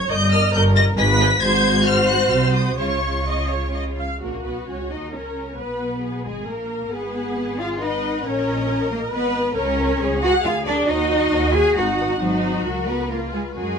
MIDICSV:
0, 0, Header, 1, 6, 480
1, 0, Start_track
1, 0, Tempo, 440205
1, 106, Time_signature, 3, 2, 24, 8
1, 2025, Tempo, 472441
1, 4425, Tempo, 454890
1, 5385, Tempo, 446429
1, 9225, Tempo, 438276
1, 13065, Tempo, 457666
1, 14723, End_track
2, 0, Start_track
2, 0, Title_t, "Violin section"
2, 0, Program_c, 0, 48
2, 97, Note_on_c, 0, 91, 121
2, 337, Note_off_c, 0, 91, 0
2, 342, Note_on_c, 0, 89, 112
2, 579, Note_off_c, 0, 89, 0
2, 580, Note_on_c, 0, 91, 126
2, 667, Note_off_c, 0, 91, 0
2, 827, Note_on_c, 0, 94, 125
2, 914, Note_off_c, 0, 94, 0
2, 1059, Note_on_c, 0, 95, 127
2, 1531, Note_off_c, 0, 95, 0
2, 1540, Note_on_c, 0, 92, 127
2, 2017, Note_on_c, 0, 89, 125
2, 2023, Note_off_c, 0, 92, 0
2, 2248, Note_on_c, 0, 90, 124
2, 2253, Note_off_c, 0, 89, 0
2, 2483, Note_on_c, 0, 89, 104
2, 2487, Note_off_c, 0, 90, 0
2, 2725, Note_off_c, 0, 89, 0
2, 2728, Note_on_c, 0, 87, 75
2, 2967, Note_off_c, 0, 87, 0
2, 2977, Note_on_c, 0, 85, 92
2, 3928, Note_off_c, 0, 85, 0
2, 4434, Note_on_c, 0, 58, 61
2, 4657, Note_off_c, 0, 58, 0
2, 4679, Note_on_c, 0, 59, 50
2, 4915, Note_off_c, 0, 59, 0
2, 4916, Note_on_c, 0, 61, 56
2, 5144, Note_on_c, 0, 63, 50
2, 5147, Note_off_c, 0, 61, 0
2, 5382, Note_on_c, 0, 61, 42
2, 5384, Note_off_c, 0, 63, 0
2, 5865, Note_on_c, 0, 59, 61
2, 5866, Note_off_c, 0, 61, 0
2, 6576, Note_off_c, 0, 59, 0
2, 6594, Note_on_c, 0, 56, 63
2, 6834, Note_off_c, 0, 56, 0
2, 6842, Note_on_c, 0, 58, 61
2, 7304, Note_off_c, 0, 58, 0
2, 7311, Note_on_c, 0, 78, 53
2, 8233, Note_off_c, 0, 78, 0
2, 8265, Note_on_c, 0, 78, 55
2, 8736, Note_off_c, 0, 78, 0
2, 8743, Note_on_c, 0, 75, 68
2, 9682, Note_off_c, 0, 75, 0
2, 9695, Note_on_c, 0, 75, 70
2, 10165, Note_off_c, 0, 75, 0
2, 10173, Note_on_c, 0, 71, 81
2, 10261, Note_off_c, 0, 71, 0
2, 10420, Note_on_c, 0, 71, 64
2, 10507, Note_off_c, 0, 71, 0
2, 10664, Note_on_c, 0, 71, 70
2, 10751, Note_off_c, 0, 71, 0
2, 10901, Note_on_c, 0, 71, 74
2, 10989, Note_off_c, 0, 71, 0
2, 11140, Note_on_c, 0, 70, 64
2, 11228, Note_off_c, 0, 70, 0
2, 11380, Note_on_c, 0, 70, 68
2, 11468, Note_off_c, 0, 70, 0
2, 11617, Note_on_c, 0, 73, 81
2, 11704, Note_off_c, 0, 73, 0
2, 11856, Note_on_c, 0, 73, 63
2, 11944, Note_off_c, 0, 73, 0
2, 12104, Note_on_c, 0, 73, 73
2, 12192, Note_off_c, 0, 73, 0
2, 12344, Note_on_c, 0, 73, 68
2, 12432, Note_off_c, 0, 73, 0
2, 12586, Note_on_c, 0, 71, 58
2, 12673, Note_off_c, 0, 71, 0
2, 12838, Note_on_c, 0, 71, 60
2, 12926, Note_off_c, 0, 71, 0
2, 13066, Note_on_c, 0, 72, 73
2, 13504, Note_off_c, 0, 72, 0
2, 13536, Note_on_c, 0, 70, 78
2, 14000, Note_off_c, 0, 70, 0
2, 14017, Note_on_c, 0, 71, 61
2, 14494, Note_on_c, 0, 70, 65
2, 14501, Note_off_c, 0, 71, 0
2, 14723, Note_off_c, 0, 70, 0
2, 14723, End_track
3, 0, Start_track
3, 0, Title_t, "Violin section"
3, 0, Program_c, 1, 48
3, 116, Note_on_c, 1, 70, 79
3, 118, Note_on_c, 1, 75, 74
3, 203, Note_off_c, 1, 70, 0
3, 205, Note_off_c, 1, 75, 0
3, 360, Note_on_c, 1, 75, 83
3, 362, Note_on_c, 1, 70, 74
3, 448, Note_off_c, 1, 75, 0
3, 450, Note_off_c, 1, 70, 0
3, 598, Note_on_c, 1, 70, 77
3, 601, Note_on_c, 1, 75, 79
3, 685, Note_off_c, 1, 70, 0
3, 688, Note_off_c, 1, 75, 0
3, 832, Note_on_c, 1, 70, 80
3, 836, Note_on_c, 1, 75, 91
3, 919, Note_off_c, 1, 70, 0
3, 923, Note_off_c, 1, 75, 0
3, 1066, Note_on_c, 1, 68, 79
3, 1067, Note_on_c, 1, 75, 82
3, 1153, Note_off_c, 1, 68, 0
3, 1155, Note_off_c, 1, 75, 0
3, 1311, Note_on_c, 1, 68, 91
3, 1311, Note_on_c, 1, 75, 83
3, 1398, Note_off_c, 1, 68, 0
3, 1398, Note_off_c, 1, 75, 0
3, 1549, Note_on_c, 1, 66, 93
3, 1549, Note_on_c, 1, 72, 91
3, 2935, Note_off_c, 1, 66, 0
3, 2935, Note_off_c, 1, 72, 0
3, 2981, Note_on_c, 1, 73, 61
3, 2983, Note_on_c, 1, 65, 61
3, 4193, Note_off_c, 1, 73, 0
3, 4194, Note_off_c, 1, 65, 0
3, 4430, Note_on_c, 1, 70, 48
3, 4654, Note_off_c, 1, 70, 0
3, 4661, Note_on_c, 1, 71, 46
3, 4901, Note_off_c, 1, 71, 0
3, 4915, Note_on_c, 1, 73, 50
3, 5147, Note_off_c, 1, 73, 0
3, 5154, Note_on_c, 1, 75, 49
3, 5389, Note_off_c, 1, 75, 0
3, 5397, Note_on_c, 1, 73, 45
3, 5864, Note_off_c, 1, 73, 0
3, 5868, Note_on_c, 1, 71, 52
3, 6592, Note_off_c, 1, 71, 0
3, 6594, Note_on_c, 1, 68, 59
3, 6829, Note_off_c, 1, 68, 0
3, 6832, Note_on_c, 1, 70, 55
3, 7308, Note_off_c, 1, 70, 0
3, 7309, Note_on_c, 1, 71, 62
3, 8036, Note_on_c, 1, 77, 76
3, 8037, Note_off_c, 1, 71, 0
3, 8122, Note_off_c, 1, 77, 0
3, 8277, Note_on_c, 1, 75, 68
3, 8742, Note_off_c, 1, 75, 0
3, 8745, Note_on_c, 1, 73, 75
3, 9446, Note_off_c, 1, 73, 0
3, 9458, Note_on_c, 1, 70, 83
3, 9545, Note_off_c, 1, 70, 0
3, 9697, Note_on_c, 1, 71, 86
3, 10165, Note_off_c, 1, 71, 0
3, 10175, Note_on_c, 1, 73, 88
3, 10878, Note_off_c, 1, 73, 0
3, 10881, Note_on_c, 1, 78, 107
3, 11123, Note_off_c, 1, 78, 0
3, 11127, Note_on_c, 1, 77, 94
3, 11367, Note_on_c, 1, 74, 87
3, 11371, Note_off_c, 1, 77, 0
3, 11606, Note_off_c, 1, 74, 0
3, 11613, Note_on_c, 1, 75, 96
3, 12321, Note_off_c, 1, 75, 0
3, 12326, Note_on_c, 1, 80, 97
3, 12574, Note_off_c, 1, 80, 0
3, 12579, Note_on_c, 1, 78, 84
3, 13056, Note_off_c, 1, 78, 0
3, 13056, Note_on_c, 1, 66, 87
3, 13760, Note_on_c, 1, 71, 80
3, 13768, Note_off_c, 1, 66, 0
3, 14004, Note_off_c, 1, 71, 0
3, 14015, Note_on_c, 1, 70, 60
3, 14099, Note_off_c, 1, 70, 0
3, 14251, Note_on_c, 1, 68, 65
3, 14335, Note_off_c, 1, 68, 0
3, 14482, Note_on_c, 1, 68, 72
3, 14723, Note_off_c, 1, 68, 0
3, 14723, End_track
4, 0, Start_track
4, 0, Title_t, "Viola section"
4, 0, Program_c, 2, 48
4, 105, Note_on_c, 2, 75, 108
4, 582, Note_on_c, 2, 70, 91
4, 585, Note_off_c, 2, 75, 0
4, 1062, Note_off_c, 2, 70, 0
4, 1069, Note_on_c, 2, 71, 103
4, 1536, Note_off_c, 2, 71, 0
4, 1544, Note_on_c, 2, 72, 106
4, 2007, Note_off_c, 2, 72, 0
4, 2020, Note_on_c, 2, 72, 90
4, 2952, Note_off_c, 2, 72, 0
4, 2965, Note_on_c, 2, 73, 73
4, 3401, Note_off_c, 2, 73, 0
4, 3459, Note_on_c, 2, 75, 73
4, 3686, Note_off_c, 2, 75, 0
4, 3701, Note_on_c, 2, 73, 59
4, 3943, Note_on_c, 2, 75, 70
4, 3944, Note_off_c, 2, 73, 0
4, 4024, Note_off_c, 2, 75, 0
4, 4185, Note_on_c, 2, 77, 60
4, 4420, Note_off_c, 2, 77, 0
4, 4425, Note_on_c, 2, 66, 54
4, 5343, Note_off_c, 2, 66, 0
4, 5381, Note_on_c, 2, 70, 49
4, 5856, Note_off_c, 2, 70, 0
4, 5862, Note_on_c, 2, 71, 55
4, 6338, Note_off_c, 2, 71, 0
4, 6345, Note_on_c, 2, 68, 50
4, 6820, Note_off_c, 2, 68, 0
4, 6828, Note_on_c, 2, 70, 59
4, 7292, Note_on_c, 2, 68, 71
4, 7306, Note_off_c, 2, 70, 0
4, 8265, Note_on_c, 2, 71, 74
4, 8266, Note_off_c, 2, 68, 0
4, 8736, Note_off_c, 2, 71, 0
4, 8742, Note_on_c, 2, 70, 79
4, 9694, Note_on_c, 2, 71, 96
4, 9695, Note_off_c, 2, 70, 0
4, 10170, Note_on_c, 2, 70, 89
4, 10173, Note_off_c, 2, 71, 0
4, 10641, Note_off_c, 2, 70, 0
4, 10654, Note_on_c, 2, 68, 85
4, 11615, Note_off_c, 2, 68, 0
4, 11616, Note_on_c, 2, 66, 94
4, 12560, Note_off_c, 2, 66, 0
4, 12573, Note_on_c, 2, 63, 77
4, 13046, Note_off_c, 2, 63, 0
4, 13059, Note_on_c, 2, 63, 85
4, 13524, Note_off_c, 2, 63, 0
4, 13532, Note_on_c, 2, 66, 75
4, 14005, Note_on_c, 2, 65, 66
4, 14008, Note_off_c, 2, 66, 0
4, 14486, Note_off_c, 2, 65, 0
4, 14491, Note_on_c, 2, 66, 68
4, 14723, Note_off_c, 2, 66, 0
4, 14723, End_track
5, 0, Start_track
5, 0, Title_t, "Cello section"
5, 0, Program_c, 3, 48
5, 105, Note_on_c, 3, 43, 95
5, 529, Note_off_c, 3, 43, 0
5, 589, Note_on_c, 3, 43, 105
5, 1009, Note_off_c, 3, 43, 0
5, 1068, Note_on_c, 3, 44, 107
5, 1488, Note_off_c, 3, 44, 0
5, 1544, Note_on_c, 3, 44, 91
5, 2451, Note_off_c, 3, 44, 0
5, 2488, Note_on_c, 3, 48, 77
5, 2971, Note_off_c, 3, 48, 0
5, 2971, Note_on_c, 3, 49, 63
5, 4188, Note_off_c, 3, 49, 0
5, 4424, Note_on_c, 3, 58, 49
5, 4651, Note_off_c, 3, 58, 0
5, 4671, Note_on_c, 3, 59, 50
5, 4906, Note_off_c, 3, 59, 0
5, 4912, Note_on_c, 3, 61, 58
5, 4996, Note_off_c, 3, 61, 0
5, 5146, Note_on_c, 3, 63, 62
5, 5380, Note_off_c, 3, 63, 0
5, 5381, Note_on_c, 3, 61, 53
5, 5866, Note_off_c, 3, 61, 0
5, 5866, Note_on_c, 3, 59, 59
5, 6577, Note_off_c, 3, 59, 0
5, 6590, Note_on_c, 3, 56, 63
5, 6825, Note_on_c, 3, 58, 62
5, 6831, Note_off_c, 3, 56, 0
5, 7299, Note_on_c, 3, 59, 72
5, 7305, Note_off_c, 3, 58, 0
5, 8017, Note_off_c, 3, 59, 0
5, 8025, Note_on_c, 3, 65, 83
5, 8264, Note_on_c, 3, 63, 74
5, 8268, Note_off_c, 3, 65, 0
5, 8735, Note_on_c, 3, 61, 86
5, 8745, Note_off_c, 3, 63, 0
5, 9441, Note_off_c, 3, 61, 0
5, 9454, Note_on_c, 3, 58, 87
5, 9541, Note_off_c, 3, 58, 0
5, 9693, Note_on_c, 3, 59, 87
5, 10163, Note_off_c, 3, 59, 0
5, 10171, Note_on_c, 3, 61, 100
5, 10877, Note_off_c, 3, 61, 0
5, 10893, Note_on_c, 3, 66, 113
5, 10981, Note_off_c, 3, 66, 0
5, 11132, Note_on_c, 3, 65, 88
5, 11220, Note_off_c, 3, 65, 0
5, 11374, Note_on_c, 3, 62, 107
5, 11610, Note_off_c, 3, 62, 0
5, 11612, Note_on_c, 3, 63, 106
5, 12335, Note_off_c, 3, 63, 0
5, 12335, Note_on_c, 3, 68, 108
5, 12578, Note_off_c, 3, 68, 0
5, 12579, Note_on_c, 3, 66, 93
5, 13065, Note_off_c, 3, 66, 0
5, 13067, Note_on_c, 3, 54, 82
5, 13759, Note_off_c, 3, 54, 0
5, 13769, Note_on_c, 3, 59, 83
5, 14008, Note_off_c, 3, 59, 0
5, 14010, Note_on_c, 3, 58, 74
5, 14248, Note_on_c, 3, 56, 83
5, 14252, Note_off_c, 3, 58, 0
5, 14332, Note_off_c, 3, 56, 0
5, 14493, Note_on_c, 3, 56, 73
5, 14723, Note_off_c, 3, 56, 0
5, 14723, End_track
6, 0, Start_track
6, 0, Title_t, "Double bass section"
6, 0, Program_c, 4, 48
6, 110, Note_on_c, 4, 31, 86
6, 532, Note_off_c, 4, 31, 0
6, 585, Note_on_c, 4, 31, 100
6, 1007, Note_off_c, 4, 31, 0
6, 1071, Note_on_c, 4, 32, 102
6, 1490, Note_off_c, 4, 32, 0
6, 1546, Note_on_c, 4, 32, 92
6, 2452, Note_off_c, 4, 32, 0
6, 2497, Note_on_c, 4, 36, 77
6, 2974, Note_on_c, 4, 37, 60
6, 2976, Note_off_c, 4, 36, 0
6, 4190, Note_off_c, 4, 37, 0
6, 4430, Note_on_c, 4, 34, 51
6, 4655, Note_off_c, 4, 34, 0
6, 4675, Note_on_c, 4, 35, 46
6, 4759, Note_off_c, 4, 35, 0
6, 4911, Note_on_c, 4, 37, 50
6, 5144, Note_off_c, 4, 37, 0
6, 5150, Note_on_c, 4, 39, 49
6, 5385, Note_on_c, 4, 37, 41
6, 5387, Note_off_c, 4, 39, 0
6, 5864, Note_on_c, 4, 35, 49
6, 5867, Note_off_c, 4, 37, 0
6, 6588, Note_on_c, 4, 32, 50
6, 6590, Note_off_c, 4, 35, 0
6, 6831, Note_off_c, 4, 32, 0
6, 6836, Note_on_c, 4, 34, 52
6, 7306, Note_on_c, 4, 32, 56
6, 7310, Note_off_c, 4, 34, 0
6, 8706, Note_off_c, 4, 32, 0
6, 8749, Note_on_c, 4, 34, 63
6, 9698, Note_off_c, 4, 34, 0
6, 9702, Note_on_c, 4, 32, 63
6, 10168, Note_off_c, 4, 32, 0
6, 10181, Note_on_c, 4, 37, 87
6, 10599, Note_off_c, 4, 37, 0
6, 10654, Note_on_c, 4, 37, 83
6, 11077, Note_off_c, 4, 37, 0
6, 11133, Note_on_c, 4, 38, 70
6, 11558, Note_off_c, 4, 38, 0
6, 11619, Note_on_c, 4, 39, 79
6, 12042, Note_off_c, 4, 39, 0
6, 12097, Note_on_c, 4, 39, 86
6, 12522, Note_off_c, 4, 39, 0
6, 12579, Note_on_c, 4, 32, 80
6, 13008, Note_off_c, 4, 32, 0
6, 13071, Note_on_c, 4, 32, 75
6, 13507, Note_off_c, 4, 32, 0
6, 13542, Note_on_c, 4, 37, 69
6, 14481, Note_off_c, 4, 37, 0
6, 14506, Note_on_c, 4, 42, 60
6, 14723, Note_off_c, 4, 42, 0
6, 14723, End_track
0, 0, End_of_file